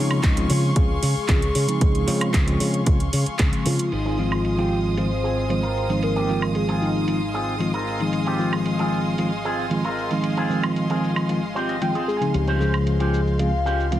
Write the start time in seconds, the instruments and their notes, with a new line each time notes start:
Already playing: fingered electric bass C#3, tine electric piano C#3 F3 G#3 C4 F4, soft synth lead D#4, violin section G#4 F5 C6 C#6
0.11 high woodblock
0.23 fingered electric bass C#2, kick, clap, closed hi-hat
0.36 tine electric piano C#3 F3 G#3 C4 F4, closed hi-hat
0.50 fingered electric bass C#3, soft synth lead F4, open hi-hat
0.76 fingered electric bass C#2, tine electric piano C#3 F3 G#3 C4 F4, soft synth lead G#4, kick, closed hi-hat
1.03 fingered electric bass C#3, open hi-hat
1.16 muted fingered electric bass stroke
1.28 fingered electric bass C#2, tine electric piano C#3 F3 G#3 C4 F4, kick, clap, closed hi-hat
1.42 closed hi-hat
1.55 fingered electric bass C#3, open hi-hat
1.68 tine electric piano C#3 F3 G#3 C4 D#4, closed hi-hat
1.81 fingered electric bass C#2, kick, closed hi-hat
1.95 closed hi-hat
2.07 tine electric piano C#3 F3 G#3 C4 F4, fingered electric bass C#3, open hi-hat
2.21 closed hi-hat, high woodblock
2.34 fingered electric bass C#2, kick, clap, closed hi-hat
2.47 tine electric piano C#3 F3 G#3 C4 F4, closed hi-hat
2.60 fingered electric bass C#3, open hi-hat
2.74 closed hi-hat
2.86 fingered electric bass C#2, tine electric piano C#3 F3 G#3 C4 F4, kick, closed hi-hat
3.00 closed hi-hat
3.13 fingered electric bass C#3, open hi-hat
3.26 muted fingered electric bass stroke, closed hi-hat
3.39 fingered electric bass C#2, tine electric piano C#3 F3 G#3 C4 G#4, kick, clap, closed hi-hat
3.53 closed hi-hat
3.66 fingered electric bass C#3, soft synth lead F4, open hi-hat
3.79 closed hi-hat
3.92 fingered electric bass G#1, violin section G#3 F5 C6 D#6, soft synth lead D#4, closed hi-hat, crash
4.05 clean electric guitar C4 F4 G#4, closed hi-hat
4.18 tine electric piano D#3 F3 G#3 C4 F4, soft synth lead F4, shaker
4.32 high woodblock, shaker
4.45 closed hi-hat, shaker
4.58 tine electric piano D#3 F3 G#3 C4 F4, clean electric guitar C4 F4 G4, closed hi-hat
4.72 shaker
4.85 shaker
4.97 tine electric piano D#3 F3 G#3 C4 F4, soft synth lead C5, muted clean electric guitar stroke, closed hi-hat, shaker
5.24 clean electric guitar C4 F4 G#4, shaker
5.38 shaker
5.49 tine electric piano D#3 F3 G#3 C4 F4, soft synth lead C5, closed hi-hat, shaker
5.63 clean electric guitar C4 F4 A#4, closed hi-hat
5.77 shaker
5.89 tine electric piano D#3 F3 G#3 C4 D#4, closed hi-hat, shaker
6.03 soft synth lead A#4, closed hi-hat, shaker
6.16 clean electric guitar C4 F4 G4, closed hi-hat
6.28 tine electric piano D#3 F3 G#3 C4 F4, shaker
6.42 high woodblock, shaker
6.55 soft synth lead G#4, closed hi-hat, shaker
6.68 tine electric piano D#3 F3 G#3 C4 F4, clean electric guitar C4 F4 G#4, closed hi-hat
6.82 soft synth lead D#4, shaker
6.96 shaker
7.07 tine electric piano D#3 F3 G#3 C4 F4, muted clean electric guitar stroke, closed hi-hat, shaker
7.34 clean electric guitar C4 F4 G#4, shaker
7.48 shaker
7.60 tine electric piano D#3 F3 G#3 C4 F4, closed hi-hat, shaker
7.74 clean electric guitar C4 F4 A#4, closed hi-hat
7.87 shaker
7.99 tine electric piano D#3 F3 G#3 C4 D#4, closed hi-hat, shaker
8.13 closed hi-hat, shaker
8.26 clean electric guitar C4 F4 G4, closed hi-hat
8.39 tine electric piano D#3 F3 G#3 C4 F4, shaker
8.53 high woodblock, shaker
8.66 closed hi-hat, shaker
8.79 tine electric piano D#3 F3 G#3 C4 F4, clean electric guitar C4 F4 G#4, closed hi-hat
8.93 shaker
9.06 shaker
9.18 tine electric piano D#3 F3 G#3 C4 F4, muted clean electric guitar stroke, closed hi-hat, shaker
9.45 clean electric guitar C4 F4 G#4, shaker
9.59 shaker
9.70 tine electric piano D#3 F3 G#3 C4 F4, closed hi-hat, shaker
9.84 clean electric guitar C4 F4 A#4, closed hi-hat
9.98 shaker
10.10 tine electric piano D#3 F3 G#3 C4 D#4, closed hi-hat, shaker
10.24 closed hi-hat, shaker
10.37 clean electric guitar C4 F4 G#4, closed hi-hat
10.49 tine electric piano D#3 F3 G#3 C4 F4, shaker
10.63 closed hi-hat, high woodblock, shaker
10.76 closed hi-hat, shaker
10.89 tine electric piano D#3 F3 G#3 C4 F4, clean electric guitar C4 F4 G#4, closed hi-hat
11.04 shaker
11.16 closed hi-hat, high woodblock, shaker
11.28 tine electric piano D#3 F3 G#3 C4 F4, muted clean electric guitar stroke, closed hi-hat, shaker
11.55 clean electric guitar C4 F4 G4 C5, shaker
11.69 clean electric guitar D#5, closed hi-hat, shaker
11.81 tine electric piano D#3 F3 G#3 C4 F4, clean electric guitar G5, closed hi-hat, shaker
11.95 clean electric guitar C4 F4 G#4, closed hi-hat
12.08 soft synth lead G#4, shaker
12.17 tine electric piano C#3, clean electric guitar G#5
12.21 tine electric piano F3 G#3 C4 D#4, closed hi-hat, shaker
12.34 fingered electric bass C#2, soft synth lead G4, closed hi-hat, shaker
12.48 clean electric guitar C#4 F4 C5, closed hi-hat
12.60 tine electric piano C#3 F3 G#3 F4 C5, soft synth lead G#4, shaker
12.74 high woodblock, shaker
12.87 closed hi-hat, shaker
13.00 tine electric piano C#3 F3 G#3 F4 C5, clean electric guitar C#4 F4 G4, closed hi-hat
13.14 shaker
13.27 shaker
13.39 tine electric piano C#3 F3 G#3 C4 F4, soft synth lead F5, muted clean electric guitar stroke, closed hi-hat, shaker
13.65 clean electric guitar C#4 F4 G4, shaker
13.80 shaker
13.91 tine electric piano C#3 F3 G#3 C4 F4, soft synth lead F5, closed hi-hat, shaker